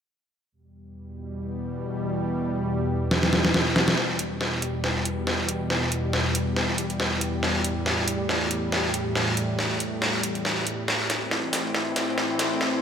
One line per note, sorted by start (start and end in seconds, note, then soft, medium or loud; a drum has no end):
0.52 3.94 E2 medium
0.52 3.94 B2 medium
0.52 3.94 G3 medium
3.11 snare medium
3.23 snare medium
3.33 snare medium
3.45 snare medium
3.54 snare medium
3.76 snare medium
3.88 snare medium
3.98 10.84 E2 medium
3.98 7.39 B2 medium
3.98 10.84 G3 medium
3.98 snare soft
4.19 closed hi-hat medium
4.41 snare soft
4.62 closed hi-hat medium
4.84 snare soft
5.05 closed hi-hat medium
5.27 snare soft
5.49 closed hi-hat medium
5.70 snare medium
5.92 closed hi-hat medium
6.13 snare medium
6.35 closed hi-hat medium
6.57 snare medium
6.78 closed hi-hat medium
6.90 closed hi-hat soft
7.00 snare medium
7.21 closed hi-hat medium
7.43 10.85 A2 medium
7.43 snare medium
7.64 closed hi-hat medium
7.86 snare medium
8.08 closed hi-hat medium
8.29 snare medium
8.51 closed hi-hat medium
8.72 snare medium
8.94 closed hi-hat medium
9.15 snare medium
9.37 closed hi-hat medium
9.59 snare medium
9.80 closed hi-hat medium
10.02 snare medium
10.23 closed hi-hat medium
10.35 closed hi-hat soft
10.45 snare medium
10.67 closed hi-hat medium
10.88 12.82 A2 medium
10.88 12.82 E3 medium
10.88 12.82 C4 medium
10.88 snare medium
11.10 snare medium
11.10 closed hi-hat medium
11.31 snare medium
11.53 snare medium
11.53 open hi-hat loud
11.75 snare medium
11.96 snare medium
11.96 closed hi-hat medium
12.18 snare medium
12.39 snare medium
12.39 closed hi-hat medium
12.61 snare medium